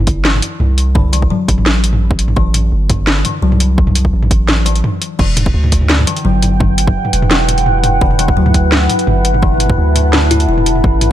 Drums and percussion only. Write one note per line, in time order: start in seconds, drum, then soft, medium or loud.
0.07 kick loud
0.07 closed hi-hat medium
0.25 snare loud
0.34 mid tom medium
0.42 closed hi-hat medium
0.60 mid tom medium
0.78 closed hi-hat medium
0.95 kick loud
0.95 mid tom medium
1.13 closed hi-hat medium
1.22 kick medium
1.31 mid tom medium
1.48 kick loud
1.48 closed hi-hat medium
1.58 mid tom medium
1.66 snare loud
1.84 closed hi-hat medium
1.93 mid tom medium
2.11 kick loud
2.19 closed hi-hat medium
2.28 mid tom medium
2.37 kick loud
2.54 closed hi-hat medium
2.54 mid tom medium
2.90 kick loud
2.90 closed hi-hat medium
2.90 mid tom medium
3.07 snare loud
3.25 closed hi-hat medium
3.25 mid tom medium
3.52 mid tom medium
3.60 closed hi-hat medium
3.78 kick loud
3.87 mid tom medium
3.95 closed hi-hat medium
4.05 kick medium
4.23 mid tom medium
4.31 kick loud
4.31 closed hi-hat medium
4.49 snare loud
4.49 mid tom medium
4.66 closed hi-hat medium
4.75 closed hi-hat soft
4.84 mid tom medium
5.02 closed hi-hat medium
5.19 kick loud
5.19 mid tom medium
5.19 crash loud
5.37 closed hi-hat medium
5.37 mid tom medium
5.46 kick loud
5.64 mid tom medium
5.72 kick medium
5.72 closed hi-hat medium
5.81 mid tom medium
5.90 snare loud
5.99 mid tom medium
6.07 closed hi-hat medium
6.16 closed hi-hat soft
6.25 mid tom medium
6.42 closed hi-hat medium
6.42 mid tom medium
6.60 kick loud
6.60 mid tom medium
6.78 closed hi-hat medium
6.87 kick loud
6.87 mid tom medium
7.05 mid tom medium
7.13 closed hi-hat medium
7.22 mid tom medium
7.31 snare loud
7.49 closed hi-hat medium
7.49 mid tom medium
7.58 closed hi-hat soft
7.66 mid tom medium
7.84 closed hi-hat medium
7.84 mid tom medium
8.01 kick loud
8.11 mid tom medium
8.19 closed hi-hat medium
8.28 kick loud
8.28 mid tom medium
8.46 mid tom medium
8.54 kick medium
8.54 closed hi-hat medium
8.72 snare loud
8.72 mid tom medium
8.90 closed hi-hat medium
8.90 mid tom medium
8.99 closed hi-hat soft
9.07 mid tom medium
9.25 closed hi-hat medium
9.34 mid tom medium
9.43 kick loud
9.52 mid tom soft
9.54 mid tom soft
9.57 closed hi-hat medium
9.57 mid tom soft
9.60 mid tom soft
9.63 mid tom soft
9.66 mid tom soft
9.69 kick loud
9.69 mid tom medium
9.96 closed hi-hat medium
9.96 mid tom medium
10.13 snare loud
10.13 mid tom medium
10.31 closed hi-hat medium
10.31 mid tom medium
10.40 closed hi-hat soft
10.58 mid tom soft
10.66 closed hi-hat medium
10.75 mid tom soft
10.84 kick loud
10.84 mid tom medium
11.01 closed hi-hat medium
11.01 mid tom medium